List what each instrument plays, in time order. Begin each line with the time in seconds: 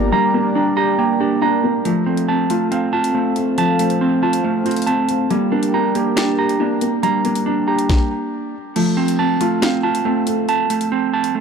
Already playing: 808-style bass G1, felt piano G3 A#3 D4 G4 G5, clean electric guitar A#3 D4 A#5, analog synth pad G4 A#4 D5 A#5
0.12 felt piano G3, clean electric guitar A#5
0.34 felt piano A#3, clean electric guitar A#3
0.55 clean electric guitar D4, felt piano D4
0.77 felt piano G4, clean electric guitar A#5
0.99 clean electric guitar A#3, felt piano G5
1.20 clean electric guitar D4, felt piano G4
1.42 felt piano D4, clean electric guitar A#5
1.64 felt piano A#3
1.85 felt piano F3, clean electric guitar A3, analog synth pad C4 F4 A4 F5, closed hi-hat
2.06 felt piano A3, clean electric guitar C4
2.17 closed hi-hat
2.28 felt piano C4, clean electric guitar A5
2.50 clean electric guitar A3, felt piano F4, closed hi-hat
2.71 clean electric guitar C4, felt piano F5, closed hi-hat
2.93 felt piano F4, clean electric guitar A5
3.04 closed hi-hat
3.15 clean electric guitar A3, felt piano C4
3.36 felt piano A3, closed hi-hat
3.58 felt piano F3, clean electric guitar A5, closed hi-hat
3.79 clean electric guitar A3, felt piano A3, closed hi-hat
3.90 closed hi-hat
4.01 clean electric guitar C4, felt piano C4
4.23 felt piano F4, clean electric guitar A5
4.33 closed hi-hat
4.44 clean electric guitar A3, felt piano F5
4.65 clean electric guitar C4, felt piano F4, closed hi-hat
4.71 closed hi-hat
4.76 closed hi-hat
4.82 closed hi-hat
4.87 felt piano C4, clean electric guitar A5, closed hi-hat
5.09 felt piano A3, closed hi-hat
5.30 felt piano G3, clean electric guitar A#3, analog synth pad D4 G4 A#4 G5, closed hi-hat
5.52 felt piano A#3, clean electric guitar D4
5.63 closed hi-hat
5.74 felt piano D4, clean electric guitar A#5
5.95 clean electric guitar A#3, felt piano G4, closed hi-hat
6.16 clean electric guitar D4, felt piano G5, finger snap, snare, closed hi-hat
6.38 felt piano G4, clean electric guitar A#5
6.49 closed hi-hat
6.60 clean electric guitar A#3, felt piano D4
6.81 felt piano A#3, closed hi-hat
7.03 felt piano G3, clean electric guitar A#5, closed hi-hat
7.25 felt piano A#3, clean electric guitar A#3, closed hi-hat
7.35 closed hi-hat
7.46 clean electric guitar D4, felt piano D4
7.68 felt piano G4, clean electric guitar A#5
7.79 closed hi-hat
7.89 kick, snare
8.76 felt piano F3, clean electric guitar A3, closed hi-hat, crash
8.97 felt piano A3, clean electric guitar C4
9.08 closed hi-hat
9.19 felt piano C4, clean electric guitar A5
9.41 clean electric guitar A3, felt piano F4, closed hi-hat
9.62 clean electric guitar C4, felt piano F5, finger snap, snare, closed hi-hat
9.83 felt piano F4, clean electric guitar A5
9.95 closed hi-hat
10.05 clean electric guitar A3, felt piano C4
10.27 felt piano A3, closed hi-hat
10.49 clean electric guitar A5, closed hi-hat
10.70 clean electric guitar A3, closed hi-hat
10.81 closed hi-hat
10.92 clean electric guitar C4
11.13 clean electric guitar A5
11.24 closed hi-hat
11.35 clean electric guitar A3